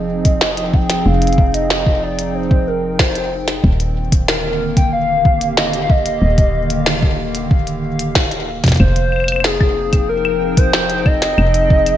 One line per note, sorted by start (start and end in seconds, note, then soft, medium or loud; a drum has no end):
0.00 1.03 F1 medium
0.00 3.64 F3 medium
0.00 5.70 C4 medium
0.00 3.64 D#4 medium
0.00 3.64 G#4 medium
0.00 0.75 D#5 loud
0.00 0.54 F5 medium
0.10 5.70 G5 medium
0.25 kick loud
0.25 closed hi-hat medium
0.41 snare loud
0.57 closed hi-hat medium
0.74 1.07 G5 loud
0.74 kick loud
0.90 snare medium
0.90 closed hi-hat medium
1.06 3.61 F1 medium
1.06 1.54 F5 loud
1.22 closed hi-hat soft
1.27 closed hi-hat soft
1.33 closed hi-hat soft
1.38 kick loud
1.54 2.04 D#5 loud
1.54 closed hi-hat medium
1.70 snare loud
1.86 kick loud
2.03 2.36 D5 loud
2.19 closed hi-hat medium
2.35 2.69 C5 loud
2.51 kick loud
2.67 3.01 A#4 medium
2.99 3.48 C5 medium
2.99 kick loud
2.99 snare loud
3.15 closed hi-hat medium
3.48 snare medium
3.48 closed hi-hat medium
3.64 6.19 D#1 medium
3.64 8.80 D#3 medium
3.64 kick loud
3.80 10.24 A#3 medium
3.80 closed hi-hat medium
3.94 8.80 D3 medium
4.12 kick loud
4.12 closed hi-hat medium
4.25 4.73 A#4 loud
4.25 10.87 F5 medium
4.25 snare loud
4.77 4.92 G5 loud
4.77 kick loud
4.77 closed hi-hat medium
4.92 8.80 G4 medium
4.92 5.53 F5 loud
5.25 kick loud
5.41 closed hi-hat medium
5.57 5.69 D#5 loud
5.57 snare loud
5.73 closed hi-hat medium
5.83 5.91 F5 medium
5.90 7.19 D#5 loud
5.90 kick loud
6.06 closed hi-hat medium
6.22 8.77 D#1 medium
6.38 kick loud
6.38 closed hi-hat soft
6.70 closed hi-hat medium
6.86 snare loud
7.03 kick loud
7.35 closed hi-hat medium
7.51 kick loud
7.67 closed hi-hat soft
7.99 closed hi-hat medium
8.15 kick loud
8.15 snare loud
8.31 closed hi-hat medium
8.64 kick loud
8.64 snare medium
8.64 closed hi-hat medium
8.66 kick medium
8.66 snare soft
8.66 closed hi-hat soft
8.68 kick medium
8.71 kick medium
8.71 snare soft
8.73 kick soft
8.73 closed hi-hat soft
8.75 kick soft
8.75 snare soft
8.75 closed hi-hat soft
8.78 11.35 F1 medium
8.78 9.46 C5 loud
8.78 kick soft
8.78 claves soft
8.80 11.97 F3 medium
8.80 kick loud
8.96 closed hi-hat soft
9.12 claves soft
9.16 claves soft
9.20 11.97 C4 medium
9.20 claves soft
9.24 claves soft
9.28 11.97 D#4 medium
9.28 closed hi-hat medium
9.28 claves medium
9.32 claves medium
9.36 claves medium
9.40 snare loud
9.40 claves medium
9.45 10.09 G#4 medium
9.51 11.97 G#4 medium
9.51 11.97 G5 medium
9.61 kick loud
9.61 claves soft
9.93 kick loud
9.93 closed hi-hat medium
9.93 claves soft
10.09 10.59 A#4 loud
10.25 claves medium
10.57 11.07 C5 loud
10.57 kick loud
10.57 closed hi-hat medium
10.73 snare loud
10.73 claves medium
10.90 closed hi-hat soft
11.06 11.97 D#5 loud
11.06 kick loud
11.06 claves soft
11.22 snare medium
11.22 closed hi-hat medium
11.38 11.97 F1 medium
11.38 claves medium
11.54 closed hi-hat soft
11.70 kick loud
11.86 closed hi-hat medium
11.86 claves soft